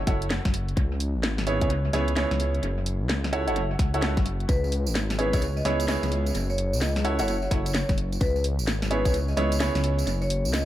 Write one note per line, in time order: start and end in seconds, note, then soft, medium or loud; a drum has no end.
0.07 0.39 F#1 medium
0.07 0.25 E4 medium
0.07 0.25 F#4 medium
0.07 0.25 A4 medium
0.07 0.25 C#5 medium
0.07 0.25 F#5 medium
0.07 kick loud
0.07 snare medium
0.07 open hi-hat loud
0.22 closed hi-hat medium
0.30 snare loud
0.45 0.74 F#1 medium
0.45 kick loud
0.45 snare medium
0.45 closed hi-hat soft
0.54 open hi-hat loud
0.68 closed hi-hat soft
0.77 1.17 C#2 loud
0.77 kick loud
0.77 closed hi-hat medium
1.00 open hi-hat medium
1.15 1.63 G#1 medium
1.23 snare loud
1.38 snare medium
1.38 closed hi-hat soft
1.47 1.59 B3 medium
1.47 1.59 C#4 medium
1.47 1.59 E4 medium
1.47 1.59 G#4 medium
1.47 1.59 C#5 medium
1.47 open hi-hat medium
1.61 1.90 C#2 loud
1.61 1.69 B3 medium
1.61 1.69 C#4 medium
1.61 1.69 E4 medium
1.61 1.69 G#4 medium
1.61 1.69 C#5 medium
1.61 kick loud
1.61 closed hi-hat medium
1.70 closed hi-hat medium
1.93 2.25 C#2 medium
1.93 2.11 B3 medium
1.93 2.11 C#4 medium
1.93 2.11 E4 medium
1.93 2.11 G#4 medium
1.93 2.11 C#5 loud
1.93 snare medium
1.93 open hi-hat loud
2.08 closed hi-hat medium
2.17 2.62 B3 medium
2.17 2.62 C#4 medium
2.17 2.62 E4 medium
2.17 2.62 G#4 medium
2.17 2.62 C#5 medium
2.17 snare loud
2.31 2.60 C#2 loud
2.31 snare medium
2.31 closed hi-hat soft
2.40 open hi-hat medium
2.55 closed hi-hat soft
2.63 3.02 F#1 loud
2.63 closed hi-hat medium
2.86 open hi-hat medium
3.01 3.49 C#2 medium
3.09 snare loud
3.24 snare medium
3.24 closed hi-hat soft
3.33 3.44 E4 loud
3.33 3.44 F#4 medium
3.33 3.44 A4 medium
3.33 3.44 C#5 medium
3.33 3.44 F#5 loud
3.33 open hi-hat medium
3.47 3.76 F#1 loud
3.47 3.61 E4 medium
3.47 3.61 F#4 medium
3.47 3.61 A4 medium
3.47 3.61 C#5 medium
3.47 3.61 F#5 loud
3.47 closed hi-hat medium
3.56 closed hi-hat medium
3.79 4.19 C#2 medium
3.79 kick loud
3.79 snare medium
3.79 open hi-hat medium
3.94 4.01 E4 medium
3.94 4.01 F#4 medium
3.94 4.01 A4 medium
3.94 4.01 C#5 medium
3.94 4.01 F#5 loud
3.94 closed hi-hat medium
4.02 4.15 E4 medium
4.02 4.15 F#4 medium
4.02 4.15 A4 medium
4.02 4.15 C#5 medium
4.02 4.15 F#5 medium
4.02 snare loud
4.17 4.46 F#1 medium
4.17 kick loud
4.17 snare medium
4.17 closed hi-hat soft
4.26 open hi-hat medium
4.40 closed hi-hat soft
4.49 4.88 C#2 medium
4.49 4.72 B4 loud
4.49 kick loud
4.49 closed hi-hat medium
4.49 tambourine medium
4.64 tambourine soft
4.72 open hi-hat loud
4.87 5.35 G#1 medium
4.87 tambourine medium
4.95 snare loud
4.95 tambourine medium
5.10 snare medium
5.10 closed hi-hat soft
5.10 tambourine soft
5.18 5.31 B3 medium
5.18 5.31 C#4 medium
5.18 5.31 E4 medium
5.18 5.31 G#4 medium
5.18 5.42 B4 medium
5.18 5.31 C#5 medium
5.18 open hi-hat medium
5.33 5.62 C#2 medium
5.33 5.41 B3 medium
5.33 5.41 C#4 medium
5.33 5.41 E4 medium
5.33 5.41 G#4 medium
5.33 5.41 C#5 loud
5.33 kick loud
5.33 closed hi-hat medium
5.33 tambourine medium
5.42 closed hi-hat medium
5.42 tambourine medium
5.57 5.80 D#5 medium
5.57 tambourine soft
5.65 5.98 C#2 medium
5.65 5.83 B3 medium
5.65 5.83 C#4 medium
5.65 5.83 E4 medium
5.65 5.83 G#4 medium
5.65 5.83 C#5 loud
5.65 snare soft
5.65 open hi-hat loud
5.80 closed hi-hat medium
5.80 tambourine medium
5.88 6.34 B3 medium
5.88 6.34 C#4 medium
5.88 6.34 E4 medium
5.88 6.34 G#4 medium
5.88 6.34 C#5 medium
5.88 snare loud
5.88 tambourine medium
6.03 6.32 C#2 loud
6.03 snare medium
6.03 closed hi-hat medium
6.03 tambourine soft
6.12 open hi-hat medium
6.26 closed hi-hat soft
6.26 tambourine medium
6.34 6.74 F#1 loud
6.34 closed hi-hat medium
6.34 tambourine medium
6.50 6.73 C#5 medium
6.50 tambourine soft
6.58 open hi-hat loud
6.73 7.21 C#2 loud
6.73 tambourine medium
6.81 7.04 D#5 medium
6.81 snare loud
6.81 tambourine medium
6.96 snare medium
6.96 closed hi-hat soft
6.96 tambourine soft
7.04 7.16 E4 loud
7.04 7.16 F#4 medium
7.04 7.16 A4 medium
7.04 7.16 C#5 medium
7.04 7.16 F#5 loud
7.04 open hi-hat medium
7.19 7.48 F#1 loud
7.19 7.33 E4 medium
7.19 7.33 F#4 medium
7.19 7.33 A4 medium
7.19 7.33 C#5 medium
7.19 7.48 C#5 medium
7.19 7.33 F#5 loud
7.19 closed hi-hat medium
7.19 tambourine medium
7.28 closed hi-hat medium
7.28 tambourine medium
7.42 tambourine soft
7.51 7.84 F#1 medium
7.51 7.69 E4 medium
7.51 7.69 F#4 medium
7.51 7.69 A4 medium
7.51 7.69 C#5 medium
7.51 7.69 F#5 medium
7.51 kick loud
7.51 snare medium
7.51 open hi-hat loud
7.66 7.89 C#5 medium
7.66 closed hi-hat medium
7.66 tambourine medium
7.74 snare loud
7.74 tambourine medium
7.89 8.18 F#1 medium
7.89 kick loud
7.89 snare medium
7.89 closed hi-hat medium
7.89 tambourine soft
7.98 open hi-hat medium
8.12 closed hi-hat soft
8.12 tambourine medium
8.21 8.60 C#2 loud
8.21 8.44 B4 loud
8.21 kick loud
8.21 closed hi-hat medium
8.21 tambourine medium
8.36 tambourine soft
8.44 open hi-hat loud
8.59 9.07 G#1 medium
8.59 tambourine medium
8.67 snare loud
8.67 tambourine medium
8.82 snare medium
8.82 closed hi-hat soft
8.82 tambourine soft
8.91 9.03 B3 medium
8.91 9.03 C#4 medium
8.91 9.03 E4 medium
8.91 9.03 G#4 medium
8.91 9.14 B4 medium
8.91 9.03 C#5 medium
8.91 open hi-hat medium
9.05 9.34 C#2 loud
9.05 9.13 B3 medium
9.05 9.13 C#4 medium
9.05 9.13 E4 medium
9.05 9.13 G#4 medium
9.05 9.13 C#5 medium
9.05 kick loud
9.05 closed hi-hat medium
9.05 tambourine medium
9.14 closed hi-hat medium
9.14 tambourine medium
9.28 9.52 D#5 medium
9.28 tambourine soft
9.37 9.70 C#2 medium
9.37 9.55 B3 loud
9.37 9.55 C#4 medium
9.37 9.55 E4 medium
9.37 9.55 G#4 medium
9.37 9.55 C#5 loud
9.37 snare medium
9.37 open hi-hat loud
9.52 closed hi-hat medium
9.52 tambourine medium
9.60 10.06 B3 medium
9.60 10.06 C#4 medium
9.60 10.06 E4 medium
9.60 10.06 G#4 medium
9.60 10.06 C#5 loud
9.60 snare loud
9.60 tambourine medium
9.75 10.04 C#2 loud
9.75 snare medium
9.75 closed hi-hat medium
9.75 tambourine soft
9.84 open hi-hat loud
9.99 closed hi-hat soft
9.99 tambourine medium
10.07 10.47 F#1 loud
10.07 closed hi-hat medium
10.07 tambourine medium
10.22 10.45 C#5 medium
10.22 tambourine soft
10.30 open hi-hat loud
10.45 10.65 C#2 medium
10.45 tambourine medium
10.53 10.65 D#5 loud
10.53 snare loud
10.53 tambourine medium